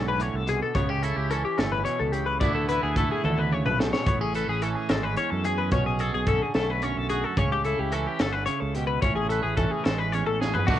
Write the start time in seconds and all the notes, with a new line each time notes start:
Already playing: B1 G#2 D3 C#4 G#4
0.08 B4
0.19 A2 C#5, closed hi-hat
0.34 C2 A4
0.47 B2 G#4, closed hi-hat
0.63 A4
0.75 C#2 C#3 B3 C#5, kick, closed hi-hat
0.89 C#4 G4
1.03 E4 A4, closed hi-hat
1.16 C#2 G4
1.30 E3 C#4 A4, closed hi-hat
1.45 G4
1.58 G1 A2 A4, snare, closed hi-hat
1.72 B4
1.85 B2 C#5, closed hi-hat
1.99 C#2 A4
2.12 C#3 G4, closed hi-hat
2.26 B4
2.40 D2 D3 A3 B3 E4 D5, kick, closed hi-hat
2.55 A4
2.69 E4 B4, closed hi-hat
2.83 D2 G#4
2.96 A3 E4 A4, kick, closed hi-hat
3.11 G#4
3.24 D2 D3 A4, high tom
3.38 B4, high tom
3.52 C#3 C#5
3.66 B1 B4, mid tom
3.79 B2 A4, snare
3.93 C#5, snare
4.06 A1 A2 B3 C#5, kick, closed hi-hat
4.21 C#4 G#4
4.34 A4 B4, closed hi-hat
4.49 A1 G#4
4.62 E3 C#4 A4, closed hi-hat
4.75 G#4
4.89 G#1 G#3 A4, snare, closed hi-hat
5.03 B4
5.16 E2 C#4 C#5, closed hi-hat
5.30 F#2 A4
5.44 G#4, closed hi-hat
5.58 B4
5.71 B1 B2 C#4 C#5, kick, closed hi-hat
5.86 G#4
5.99 G#4 A4, closed hi-hat
6.14 B1 G#4
6.27 D3 C#4 A4, kick, closed hi-hat
6.42 G#4
6.54 B1 A3 A4, snare, closed hi-hat
6.70 B4
6.82 F#2 C#4 C#5, closed hi-hat
6.97 B1 A4
7.09 F#4 G#4, closed hi-hat
7.24 A4
7.37 C#2 C#3 C#4 C#5, kick, closed hi-hat
7.52 G4
7.65 E4 A4, closed hi-hat
7.79 C#2 G4
7.92 E3 C#4 A4, closed hi-hat
8.07 G4
8.19 G1 D3 A4, snare, closed hi-hat
8.33 B4
8.46 C#3 C#5, closed hi-hat
8.60 C#2 A4
8.75 B2 G4, closed hi-hat
8.87 B4
9.02 A1 A2 C#4 C#5, kick, closed hi-hat
9.16 G#4
9.29 A4 B4, closed hi-hat
9.43 A1 G#4
9.57 E3 C#4 A4, kick, closed hi-hat
9.71 G#4
9.84 A1 G#3 A4, snare, closed hi-hat
9.98 B4
10.12 E2 C#4 C#5, closed hi-hat
10.26 A1 A4
10.40 G#4, snare
10.54 B4, floor tom
10.67 B1 B2 D3 A3 D4 F#4, kick, crash
10.71 F#4